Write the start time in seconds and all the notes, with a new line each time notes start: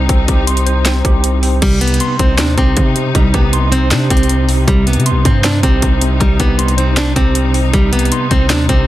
Already playing: C3 G3 C4 D#4 G4 C5 C6
0.09 C2 C4, kick, closed hi-hat
0.28 C2 G4, kick, closed hi-hat
0.47 C6, closed hi-hat
0.57 closed hi-hat
0.66 C5, closed hi-hat
0.85 C4, snare, clap, closed hi-hat
1.05 C2 G4, kick, closed hi-hat
1.24 closed hi-hat
1.42 C4, open hi-hat
1.62 C2 C3 G3 D#4, kick, closed hi-hat, crash
1.81 B3 G4, closed hi-hat
1.88 closed hi-hat
1.94 closed hi-hat
2.00 C6, closed hi-hat
2.19 C2 C4 C5, kick, closed hi-hat
2.38 D#2 C4 D4, snare, clap, closed hi-hat
2.58 C2 C4 G4, kick, closed hi-hat
2.77 C3, kick, closed hi-hat
2.96 C3, closed hi-hat
3.15 C2 G3 D#4, kick, closed hi-hat
3.34 C2 B3 G4, kick, closed hi-hat
3.53 C6, closed hi-hat
3.72 C4 C5, closed hi-hat
3.91 C3 C4 D4, snare, clap, closed hi-hat
4.10 C2 C4 G4, kick, closed hi-hat
4.17 closed hi-hat
4.23 closed hi-hat
4.29 closed hi-hat
4.49 C4, open hi-hat
4.68 C2 C3 G3 D#4, kick, closed hi-hat
4.86 B3 G4, closed hi-hat
4.93 C3, closed hi-hat
5.00 closed hi-hat
5.06 C6, closed hi-hat
5.11 C2
5.25 G2 C4 C5, kick, closed hi-hat
5.44 C4 D4, snare, clap, closed hi-hat
5.63 C2 C4 G4, kick, closed hi-hat
5.82 C2, kick, closed hi-hat
6.01 C3, closed hi-hat
6.20 C2 G3 D#4, kick, closed hi-hat
6.40 C2 B3 G4, kick, closed hi-hat
6.59 C6, closed hi-hat
6.68 closed hi-hat
6.78 C4 C5, closed hi-hat
6.97 C4 D4, snare, clap, closed hi-hat
7.16 C2 C4 G4, kick, closed hi-hat
7.35 closed hi-hat
7.54 C4, open hi-hat
7.74 C2 C3 G3, kick, closed hi-hat
7.93 B3 G4, closed hi-hat
7.99 closed hi-hat
8.05 closed hi-hat
8.12 C6, closed hi-hat
8.31 C2 C4 C5, kick, closed hi-hat
8.50 D#2 C4 D4, snare, clap, closed hi-hat
8.69 C2 C4 G4, kick, closed hi-hat